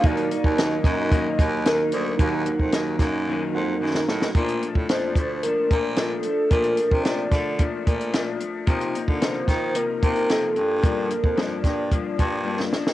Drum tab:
HH |xxx-x-x-x-x-x-x-|x-x-x-x---------|xxx-x-x-x-x-x-x-|xxx-x-x-x-xxx-x-|
SD |----o-------o---|----o-o------ooo|----o-------o---|----o-o-----o---|
BD |o--o--o-o-o-----|o--o--o---------|o--o--o---o-----|o--o--o-o-o-----|

HH |xxx-x-x-x-xxx-x-|x-x-x-x-x-x-----|
SD |----o-o-----o---|----o-o------ooo|
BD |o--o--o---o-----|o--o--o-o-o-----|